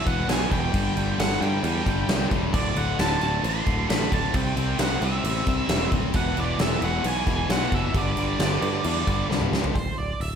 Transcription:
0.06 E1 E2 B2 E3 F#5, kick, crash
0.28 B1 E2 B2 E3 G#5, snare, crash
0.51 E1 E2 B2 E3 G5, kick, crash
0.74 G1 G2 D3 G3, kick, crash
0.96 G1 G2 D3 G3, crash
1.18 G1 G2 D3 G3 F#5, snare, crash
1.41 G2 D3 G3 G5, crash
1.63 E2 G2 D3 G3, crash
1.86 G1 G2 D3 G3, kick, crash
2.08 C2 G2 D3 G3, snare, crash
2.31 E1 G2 D3 G3, kick, crash
2.53 D1 D2 A2 D3 D5, kick, crash
2.76 D1 D2 A2 D3 F#5, crash
2.98 D1 D2 A2 D3 A5, snare, crash
3.21 D1 D2 A2 D3, crash
3.43 A1 D2 A2 D3 C6, crash
3.66 D1 D2 A2 D3, kick, crash
3.89 A1 D2 A2 D3 B5, snare, crash
4.12 D1 D2 A2 D3 A5, kick, crash
4.34 C2 C3 G3 C4 G5, kick, crash
4.56 C2 C3 G3 C4, crash
4.79 C2 C3 G3 C4 F#5, snare, crash
5.01 C2 C3 G3 C4 E5, crash
5.24 A1 C3 G3 C4, crash
5.47 C2 C3 G3 C4, kick, crash
5.69 E1 C3 G3 C4, snare, crash
5.91 D1 C3 G3 C4, kick, crash
6.13 E1 E2 B2 E3 F#5, kick, crash
6.36 E1 E2 B2 E3 D5, crash
6.58 E1 E2 B2 E3 E5, snare, crash
6.81 E1 E2 B2 E3 F#5, crash
7.04 B1 E2 B2 E3 G#5, crash
7.26 E1 E2 B2 E3, kick, crash
7.49 B1 E2 B2 E3 F#5, snare, crash
7.72 F#1 E2 B2 E3 E5, kick, crash
7.94 G1 G2 D3 G3 D5, kick, crash
8.17 G1 G2 D3 G3, crash
8.39 G1 G2 D3 G3, snare, crash
8.62 G2 D3 G3, crash
8.84 E2 G2 D3 G3, crash
9.07 G1 G2 D3 G3, kick, crash
9.29 C2 G2 D3 G3, snare
9.41 mid tom
9.52 C#2 G2 D3 G3, snare
9.64 floor tom
9.75 D1 C5, kick, open hi-hat
9.98 D1 D5
10.20 D1 E5, open hi-hat

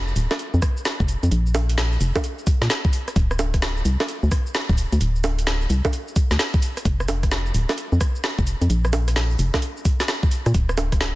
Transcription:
Already playing: F1
0.08 shaker
0.16 D1, open hi-hat, shaker
0.31 snare, closed hi-hat, high bongo, shaker
0.39 closed hi-hat, shaker
0.54 F2, shaker
0.62 kick, cross-stick, open hi-hat, shaker
0.77 shaker
0.85 snare, closed hi-hat, shaker
1.00 F1, kick, shaker
1.08 open hi-hat, shaker
1.23 F2, closed hi-hat, shaker
1.31 A#1, closed hi-hat, shaker
1.46 shaker
1.55 open hi-hat, high bongo, shaker
1.69 closed hi-hat, shaker
1.78 snare, closed hi-hat, shaker
1.92 shaker
2.01 F1, open hi-hat, shaker
2.15 kick, closed hi-hat, high bongo, shaker
2.24 closed hi-hat, shaker
2.39 shaker
2.47 kick, open hi-hat, shaker
2.62 A#2, snare, shaker
2.70 snare, closed hi-hat, shaker
2.85 kick, shaker
2.93 open hi-hat, shaker
3.08 cross-stick, closed hi-hat, shaker
3.16 D1, kick, closed hi-hat, shaker
3.31 cross-stick, shaker
3.39 open hi-hat, high bongo, shaker
3.54 kick, cross-stick, closed hi-hat, shaker
3.62 snare, closed hi-hat, shaker
3.77 shaker
3.85 C2, open hi-hat, shaker
4.00 snare, closed hi-hat, high bongo, shaker
4.08 closed hi-hat, shaker
4.23 D2, shaker
4.31 kick, cross-stick, open hi-hat, shaker
4.46 shaker
4.55 snare, closed hi-hat, shaker
4.69 D1, kick, shaker
4.78 open hi-hat, shaker
4.92 D2, closed hi-hat, shaker
5.01 D1, closed hi-hat, shaker
5.16 shaker
5.24 open hi-hat, high bongo, shaker
5.39 closed hi-hat, shaker
5.47 snare, closed hi-hat, shaker
5.62 shaker
5.70 C2, open hi-hat, shaker
5.85 kick, closed hi-hat, high bongo, shaker
5.93 closed hi-hat, shaker
6.08 shaker
6.16 kick, open hi-hat, shaker
6.31 D2, snare, shaker
6.39 snare, closed hi-hat, shaker
6.54 kick, shaker
6.62 open hi-hat, shaker
6.77 cross-stick, closed hi-hat, shaker
6.85 F1, kick, closed hi-hat, shaker
7.00 cross-stick, shaker
7.08 open hi-hat, high bongo, shaker
7.23 kick, cross-stick, closed hi-hat, shaker
7.32 snare, closed hi-hat, shaker
7.46 shaker
7.54 D1, open hi-hat, shaker
7.69 snare, closed hi-hat, high bongo, shaker
7.78 closed hi-hat, shaker
7.92 F2, shaker
8.01 kick, cross-stick, open hi-hat, shaker
8.15 shaker
8.24 snare, closed hi-hat, shaker
8.39 F1, kick, shaker
8.47 open hi-hat, shaker
8.61 F2, closed hi-hat, shaker
8.70 A#1, closed hi-hat, shaker
8.85 cross-stick, shaker
8.93 open hi-hat, high bongo, shaker
9.08 cross-stick, closed hi-hat, shaker
9.16 snare, closed hi-hat, shaker
9.31 shaker
9.39 F1, open hi-hat, shaker
9.54 kick, snare, closed hi-hat, high bongo, shaker
9.62 closed hi-hat, shaker
9.77 shaker
9.85 kick, open hi-hat, shaker
10.00 snare, shaker
10.08 snare, closed hi-hat, shaker
10.23 kick, shaker
10.31 open hi-hat, shaker
10.46 A#2, cross-stick, closed hi-hat, shaker
10.54 D1, kick, closed hi-hat, shaker
10.69 cross-stick, shaker
10.78 open hi-hat, high bongo, shaker
10.92 kick, cross-stick, closed hi-hat, shaker
11.01 snare, closed hi-hat, shaker

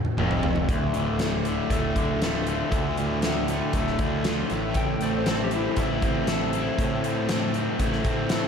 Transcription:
0.05 mid tom
0.17 F1 F2, mid tom
0.31 floor tom
0.43 floor tom
0.56 floor tom
0.68 D1 D2, kick, closed hi-hat
0.94 D1 A2 D3, closed hi-hat
1.19 A2 D3, snare, closed hi-hat
1.45 D3 A3, closed hi-hat
1.70 D1 A2 A3, kick, closed hi-hat
1.95 D1 D3, kick, closed hi-hat
2.22 A3 F4, snare, closed hi-hat
2.47 D3 A3, closed hi-hat
2.71 D2, kick, closed hi-hat
2.97 A2 D3, closed hi-hat
3.22 A2 D3, snare, closed hi-hat
3.48 D3 A3, closed hi-hat
3.73 D1 A2 A3, kick, closed hi-hat
3.87 snare
3.99 D2 D3, kick, closed hi-hat
4.24 A3 F4, snare, closed hi-hat
4.50 A1 A2, closed hi-hat
4.74 A2 G5, kick, closed hi-hat
5.01 A1 A3 C4 D5, closed hi-hat
5.17 C5
5.26 A3 C4 A4, snare, closed hi-hat
5.44 G4
5.51 C4 E4, closed hi-hat
5.76 A1 A3 E4, kick, closed hi-hat
6.02 A1 C4, kick, closed hi-hat
6.27 E4 A4, snare, closed hi-hat
6.53 C4 E4, closed hi-hat
6.78 A2, kick, closed hi-hat
7.04 A3 C4, closed hi-hat
7.29 A3 C4, snare, closed hi-hat
7.54 C4 E4, closed hi-hat
7.79 A1 A3 E4, kick, closed hi-hat
7.93 snare
8.04 A2 C4, kick, closed hi-hat
8.29 E4 A4, snare, closed hi-hat

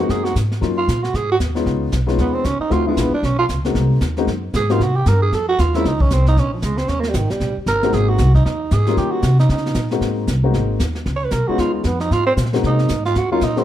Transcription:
0.00 G#3 A#3 C4 D#4 F#4
0.09 F#2 G#4, brush sweep, kick, snare
0.24 F#4, snare
0.35 G#2, kick, snare, hi-hat pedal
0.52 snare
0.61 F#2 F#3 A#3 C#4 D#4 F4, brush sweep, kick, snare
0.78 F4
0.88 A#2, kick, snare, hi-hat pedal
1.03 F#4, snare
1.14 G#2 G#4, brush sweep, kick, snare
1.32 F#4
1.39 D#2, kick, snare, hi-hat pedal
1.55 G#3 B3 C#4 D#4 F4, snare
1.66 C#2, brush sweep, kick, snare
1.92 B1, kick, snare, hi-hat pedal
2.07 G#3 B3 C#4 D#4 F4, snare
2.18 D#2 B3, brush sweep, kick, snare
2.34 C4
2.44 C#2 C#4, kick, snare, hi-hat pedal
2.59 D#4, muted upright bass stroke
2.70 D2 A3 C4 D#4 F4 F#4, brush sweep, kick, snare
2.86 G#3 B3 D4 E4 F4
2.97 A#1 B3, kick, snare, hi-hat pedal
3.11 D4, muted upright bass stroke
3.23 B1 C#4, brush sweep, kick, snare
3.39 F4
3.49 C#2, kick, snare, hi-hat pedal
3.65 G#3 A#3 C4 D#4 F#4, snare
3.75 C2, brush sweep, kick, snare
4.01 D#2, kick, snare, hi-hat pedal
4.17 G#3 A#3 C4 D#4 F#4, snare
4.27 F#2, brush sweep, kick, snare
4.54 G#2 G#4, kick, snare, hi-hat pedal
4.69 G3 A#3 C4 D#4 F4 F#4, snare
4.80 C3 F#4, brush sweep, kick, snare
4.96 G4
5.06 G2 A#4, kick, snare, hi-hat pedal
5.22 G#4
5.32 F2 A4, brush sweep, kick, snare
5.49 F#4
5.59 D#2 F4, kick, snare, hi-hat pedal
5.74 G#3 A#3 C4 C#4 E4 F4, snare
5.85 C#2 D#4, brush sweep, kick, snare
6.00 C#4, kick
6.10 C2 C4, snare, hi-hat pedal
6.26 D#4, snare
6.37 A#1 C#4, brush sweep, kick, snare
6.54 F3
6.62 C#2 G#3, kick, snare, hi-hat pedal
6.78 C4, snare
6.88 D#2 C#4, brush sweep, kick, snare
7.00 A#3, snare
7.09 G3
7.14 G#1 D#3, kick, snare, hi-hat pedal
7.30 G3, muted upright bass stroke, snare
7.40 A#1, brush sweep, kick, snare
7.57 muted upright bass stroke
7.66 G1 A#4, kick, snare, hi-hat pedal
7.83 G#3 A#3 C4 D#4 F#4, snare
7.93 G#1 G#4, brush sweep, kick, snare
8.09 F#4
8.18 C2, kick, snare, hi-hat pedal
8.35 D#4, kick, snare
8.45 D#2 D#4, brush sweep, snare
8.71 G#2 G#4, kick, snare, hi-hat pedal
8.86 G3 A#3 C#4 D#4 F4, snare
8.97 D#3 G4, brush sweep, kick, snare
9.11 F#4
9.22 C3, kick, snare, hi-hat pedal
9.39 D#4, snare
9.49 C#3 D#4, brush sweep, kick, snare
9.57 snare
9.66 snare
9.74 A#2, kick, snare, hi-hat pedal
9.91 G#3 A#3 C4 D#4 F#4, snare
10.01 G#2, brush sweep, kick, snare
10.27 C2, kick, snare, hi-hat pedal
10.43 G#3 A#3 C4 D#4 F#4
10.54 G#1, brush sweep, kick, snare
10.80 D#2, kick, snare, hi-hat pedal
10.95 snare
11.06 C#2, brush sweep, kick, snare
11.16 C#5
11.25 B4
11.31 B1 A#4, kick, snare, hi-hat pedal
11.48 G#3 B3 C#4 D#4 F4 F#4, muted upright bass stroke
11.58 D#2 F4, brush sweep, kick, snare
11.74 G#3
11.84 F2 B3, kick, snare, hi-hat pedal
12.00 D#4, snare
12.11 G#2 F4, brush sweep, kick, snare
12.27 C4
12.37 A#2, kick, snare, hi-hat pedal
12.46 snare
12.53 G#3 A#3 C4 D#4 F#4, snare
12.55 snare
12.63 C3 D#4, brush sweep, kick, snare
12.79 snare
12.89 G#2, kick, snare, hi-hat pedal
13.05 F4, snare
13.15 D#2 F#4, brush sweep, kick, snare
13.32 F#3 A#3 C#4 D#4 F4
13.41 A#2 D#4, kick, snare, hi-hat pedal
13.56 G#3 A#3 C4 D#4 F#4, snare

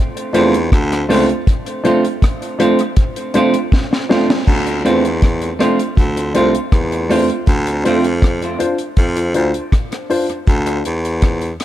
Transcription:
0.17 closed hi-hat
0.33 E2 A3 C4 D4 F4 C5, closed hi-hat
0.54 closed hi-hat
0.72 D2, kick, cross-stick, closed hi-hat
0.92 cross-stick, closed hi-hat
1.09 C#2 A3 C4 D4 F4 C5, open hi-hat
1.29 F4 C5, closed hi-hat
1.47 kick, closed hi-hat
1.66 closed hi-hat
1.84 A3 C4 D4 F4 C5, closed hi-hat
2.05 closed hi-hat
2.22 kick, cross-stick, closed hi-hat
2.42 closed hi-hat
2.59 A3 C4 D4 F4 C5, closed hi-hat
2.79 closed hi-hat
2.97 kick, closed hi-hat
3.16 closed hi-hat
3.34 A3 C4 D4 F4 C5, closed hi-hat
3.54 closed hi-hat
3.72 kick, snare
3.93 snare
4.09 A3 C4 D4 F4 C5, snare
4.30 F4 C5, snare
4.47 D2, kick, crash
4.67 closed hi-hat
4.85 E2 A3 C4 D4 F4 C5, closed hi-hat
5.05 closed hi-hat
5.22 kick, cross-stick, closed hi-hat
5.42 closed hi-hat
5.59 A3 C4 D4 F4 C5, cross-stick, closed hi-hat
5.79 closed hi-hat
5.97 D2, kick, closed hi-hat
6.17 F4 C5, closed hi-hat
6.34 C2 A3 C4 D4 F4 C5, closed hi-hat
6.55 closed hi-hat
6.72 E2, kick, cross-stick, closed hi-hat
6.92 closed hi-hat
7.09 A3 C4 D4 F4 C5, open hi-hat
7.29 F4 C5, closed hi-hat
7.47 D2, kick, closed hi-hat
7.67 closed hi-hat
7.84 F2 A3 C4 D4 F4 C5, closed hi-hat
8.04 closed hi-hat
8.22 kick, cross-stick, closed hi-hat
8.42 closed hi-hat
8.59 D4 F4 C5, closed hi-hat
8.78 closed hi-hat
8.97 F2, kick, closed hi-hat
9.16 F4 C5, closed hi-hat
9.34 D2 D4 F4 C5, closed hi-hat
9.54 closed hi-hat
9.72 kick, cross-stick, closed hi-hat
9.92 cross-stick, closed hi-hat
10.10 D4 F4 C5, open hi-hat
10.29 closed hi-hat
10.47 D2, kick, closed hi-hat
10.66 closed hi-hat
10.85 E2, closed hi-hat
11.05 closed hi-hat
11.22 kick, cross-stick, closed hi-hat
11.41 closed hi-hat
11.60 cross-stick, closed hi-hat

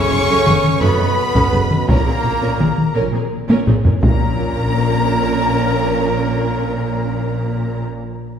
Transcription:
Already playing: C#3 C#4 C#5 C#6
0.11 F#1 F#2 C#4 A4
0.28 F#2 C#4 A4
0.46 F#1 F#2 B3 G#4, taiko mid
0.64 taiko mid
0.81 F#1 F#2 B2 B3 C#4 A4 B4 B5
0.98 F#2 B3 G#4
1.34 F#2 C#4 A4, taiko
1.51 F#1 F#2 B3 G#4
1.70 F#2 C#4 A4, taiko mid
1.88 A#1 A#2 A#3 C#4 A#4 A#5, taiko
2.06 A#2 C4 G#4
2.23 A#1 A#2 C#4 A#4
2.42 A#2 C#4 A#4
2.59 A#1 A#2 C4 G#4, taiko mid
2.78 taiko mid
2.95 A#1 A#2 C#4 A#4
3.13 A#2 C4 G#4
3.49 A#2 C#4 A#4, taiko high
3.67 A#1 A#2 C4 G#4, taiko low-mid
3.85 A#2 C#4 A#4, taiko low
4.02 A#1 A#2 A#3 C#4 A#4 A#5, taiko

